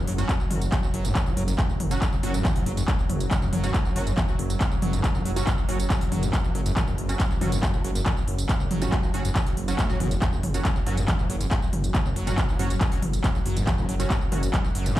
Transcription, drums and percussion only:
0.07 open hi-hat
0.18 closed hi-hat, tambourine
0.29 kick, clap, closed hi-hat, tambourine
0.40 tambourine
0.51 mid tom, open hi-hat
0.62 closed hi-hat, tambourine
0.72 kick, clap, closed hi-hat, tambourine
0.83 tambourine
0.94 open hi-hat
1.05 closed hi-hat, tambourine
1.15 kick, clap, closed hi-hat, mid tom, tambourine
1.26 tambourine
1.37 open hi-hat
1.48 closed hi-hat, tambourine
1.59 kick, clap, closed hi-hat, tambourine
1.69 tambourine
1.80 mid tom, open hi-hat
1.91 closed hi-hat, tambourine
2.02 kick, clap, closed hi-hat, tambourine
2.13 tambourine
2.23 open hi-hat
2.34 closed hi-hat, tambourine
2.45 kick, clap, closed hi-hat, mid tom, tambourine
2.56 open hi-hat, tambourine
2.66 open hi-hat
2.77 closed hi-hat, tambourine
2.88 kick, clap, closed hi-hat, tambourine
2.99 tambourine
3.10 mid tom, open hi-hat
3.20 closed hi-hat, tambourine
3.31 kick, clap, closed hi-hat, tambourine
3.42 tambourine
3.53 mid tom, open hi-hat
3.64 closed hi-hat, tambourine
3.74 kick, clap, closed hi-hat, tambourine
3.85 tambourine
3.96 open hi-hat
4.07 closed hi-hat, tambourine
4.17 kick, clap, closed hi-hat, mid tom, tambourine
4.28 tambourine
4.39 open hi-hat
4.50 closed hi-hat, tambourine
4.61 kick, clap, closed hi-hat, tambourine
4.71 tambourine
4.82 mid tom, open hi-hat
4.93 closed hi-hat, tambourine
5.04 kick, clap, closed hi-hat, tambourine
5.15 tambourine
5.25 open hi-hat
5.36 closed hi-hat, tambourine
5.47 kick, clap, closed hi-hat, mid tom, tambourine
5.58 tambourine
5.69 open hi-hat
5.80 closed hi-hat, tambourine
5.90 kick, clap, closed hi-hat, tambourine
6.01 open hi-hat, tambourine
6.12 mid tom, open hi-hat
6.23 closed hi-hat, tambourine
6.33 kick, clap, closed hi-hat, tambourine
6.44 tambourine
6.55 open hi-hat
6.66 closed hi-hat, tambourine
6.77 kick, clap, closed hi-hat, mid tom, tambourine
6.87 tambourine
6.98 open hi-hat
7.09 closed hi-hat, tambourine
7.20 kick, clap, closed hi-hat, tambourine
7.31 tambourine
7.41 mid tom, open hi-hat
7.52 closed hi-hat, tambourine
7.63 kick, clap, closed hi-hat, tambourine
7.74 tambourine
7.84 open hi-hat
7.95 closed hi-hat, tambourine
8.06 kick, clap, closed hi-hat, mid tom, tambourine
8.17 tambourine
8.28 open hi-hat
8.38 closed hi-hat, tambourine
8.49 kick, clap, closed hi-hat, tambourine
8.60 tambourine
8.71 mid tom, open hi-hat
8.82 closed hi-hat, tambourine
8.92 kick, clap, closed hi-hat, tambourine
9.03 tambourine
9.14 open hi-hat
9.25 closed hi-hat, tambourine
9.35 kick, clap, closed hi-hat, mid tom, tambourine
9.46 open hi-hat, tambourine
9.57 open hi-hat
9.68 closed hi-hat, tambourine
9.79 kick, clap, closed hi-hat, tambourine
9.90 tambourine
10.00 mid tom, open hi-hat
10.11 closed hi-hat, tambourine
10.22 kick, clap, closed hi-hat, tambourine
10.33 tambourine
10.43 mid tom, open hi-hat
10.54 closed hi-hat, tambourine
10.65 kick, clap, closed hi-hat, tambourine
10.76 tambourine
10.87 open hi-hat
10.97 closed hi-hat, tambourine
11.08 kick, clap, closed hi-hat, mid tom, tambourine
11.19 tambourine
11.30 open hi-hat
11.41 closed hi-hat, tambourine
11.51 kick, clap, closed hi-hat, tambourine
11.62 tambourine
11.73 mid tom, open hi-hat
11.84 closed hi-hat, tambourine
11.95 kick, clap, closed hi-hat, tambourine
12.06 tambourine
12.16 open hi-hat
12.27 closed hi-hat, tambourine
12.38 kick, clap, closed hi-hat, mid tom, tambourine
12.49 tambourine
12.59 open hi-hat
12.70 closed hi-hat, tambourine
12.81 kick, clap, closed hi-hat, tambourine
12.92 open hi-hat, tambourine
13.02 mid tom, open hi-hat
13.13 closed hi-hat, tambourine
13.24 kick, clap, closed hi-hat, tambourine
13.35 tambourine
13.46 open hi-hat
13.57 closed hi-hat, tambourine
13.67 kick, clap, closed hi-hat, mid tom, tambourine
13.78 tambourine
13.89 open hi-hat
14.00 closed hi-hat, tambourine
14.10 kick, clap, closed hi-hat, tambourine
14.21 tambourine
14.32 mid tom, open hi-hat
14.43 closed hi-hat, tambourine
14.54 kick, clap, closed hi-hat, tambourine
14.64 tambourine
14.75 open hi-hat
14.86 closed hi-hat, tambourine
14.97 kick, clap, closed hi-hat, mid tom, tambourine

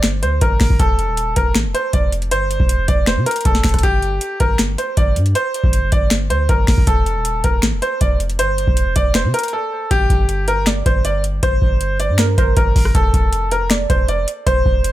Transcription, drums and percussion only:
0.03 finger snap, snare, closed hi-hat
0.23 closed hi-hat
0.41 kick, closed hi-hat
0.60 finger snap, kick, snare, open hi-hat
0.70 kick
0.79 kick, closed hi-hat
0.99 closed hi-hat
1.17 closed hi-hat
1.36 kick, closed hi-hat
1.55 finger snap, snare, closed hi-hat
1.75 closed hi-hat
1.93 kick, closed hi-hat
2.12 closed hi-hat
2.22 closed hi-hat
2.31 closed hi-hat
2.51 closed hi-hat
2.60 kick
2.69 closed hi-hat
2.88 kick, closed hi-hat
3.06 finger snap, snare, closed hi-hat
3.26 closed hi-hat
3.31 closed hi-hat
3.36 closed hi-hat
3.41 closed hi-hat
3.45 kick, closed hi-hat
3.55 snare
3.64 finger snap, kick, snare, closed hi-hat, open hi-hat
3.69 closed hi-hat
3.74 kick, cross-stick, closed hi-hat
3.79 closed hi-hat
3.83 kick, closed hi-hat
4.02 closed hi-hat
4.21 closed hi-hat
4.40 kick, closed hi-hat
4.58 finger snap, snare, closed hi-hat
4.78 closed hi-hat
4.97 kick, closed hi-hat
5.16 closed hi-hat
5.26 closed hi-hat
5.35 closed hi-hat
5.54 closed hi-hat
5.64 kick
5.73 closed hi-hat
5.92 kick, closed hi-hat
6.10 finger snap, snare, closed hi-hat
6.30 closed hi-hat
6.49 kick, closed hi-hat
6.67 finger snap, kick, snare, open hi-hat
6.78 kick
6.87 kick, closed hi-hat
7.06 closed hi-hat
7.25 closed hi-hat
7.44 kick, closed hi-hat
7.62 finger snap, snare, closed hi-hat
7.82 closed hi-hat
8.01 kick, closed hi-hat
8.20 closed hi-hat
8.30 closed hi-hat
8.39 closed hi-hat
8.58 closed hi-hat
8.67 kick
8.77 closed hi-hat
8.96 kick, closed hi-hat
9.14 finger snap, snare, closed hi-hat
9.34 closed hi-hat
9.39 closed hi-hat
9.43 closed hi-hat
9.48 closed hi-hat
9.91 kick, closed hi-hat
10.10 kick, closed hi-hat
10.29 closed hi-hat
10.48 closed hi-hat
10.66 finger snap, snare, closed hi-hat
10.86 kick, closed hi-hat
11.05 closed hi-hat
11.24 closed hi-hat
11.43 kick, closed hi-hat
11.62 kick
11.81 closed hi-hat
12.00 closed hi-hat
12.18 finger snap, snare, closed hi-hat
12.38 kick, closed hi-hat
12.57 kick, closed hi-hat
12.76 kick, open hi-hat
12.85 cross-stick
12.95 kick, closed hi-hat
13.14 kick, closed hi-hat
13.33 closed hi-hat
13.51 closed hi-hat
13.70 finger snap, snare, closed hi-hat
13.90 kick, closed hi-hat
14.08 closed hi-hat
14.28 closed hi-hat
14.47 kick, closed hi-hat
14.66 kick
14.84 closed hi-hat

